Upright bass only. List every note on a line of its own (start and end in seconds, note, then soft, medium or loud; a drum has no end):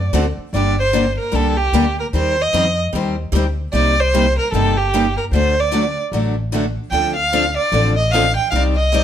0.00 0.12 F#2 medium
0.13 0.36 D2 medium
0.38 muted upright bass stroke soft
0.53 1.17 G1 medium
1.33 1.67 C2 medium
1.72 2.07 D2 medium
2.13 2.45 D#2 medium
2.53 2.87 F2 medium
2.93 3.27 D#2 medium
3.32 3.66 D2 medium
3.73 4.37 C2 medium
4.52 5.16 G1 medium
5.32 5.96 D2 medium
6.12 6.76 A1 medium
6.91 7.56 D2 medium
7.72 8.36 A1 medium
8.52 9.04 C2 medium